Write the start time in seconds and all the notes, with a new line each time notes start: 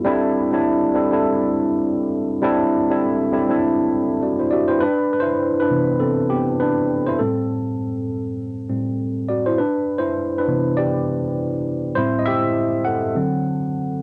0.04 G3 C4 D4 E4 A4
0.51 G3 C4 D4 E4 A4
0.94 G3 C4 D4 E4 A4
1.11 G3 C4 D4 E4 A4
2.42 G3 C4 D4 E4 A4
2.90 G3 C4 D4 E4 A4
3.32 G3 C4 D4 E4 A4
3.49 G3 C4 D4 E4 A4
4.23 F#4 D5
4.40 E4 C5
4.51 F#4 G4 D5 E5
4.68 E4 B4 C5 G5
4.81 D4 B4
5.13 B4
5.20 E4 C5
5.60 D4 B4
5.70 C3 E3 B3
6.00 C4 A4
6.30 B3 G4
6.60 D4 B4
7.06 E4 C5
7.19 A2 G3 C4 A4
8.69 A2 G3 C4
9.29 F#4 D5
9.46 E4 C5
9.58 D4 B4
9.98 E4 C5
10.38 D4 B4
10.47 C3 E3 B3
10.77 G4 D5
11.95 A2 G3 C4 E4 C5
12.19 D#5
12.26 G4 E5
12.85 A4 F#5
13.15 D3 F#3 C4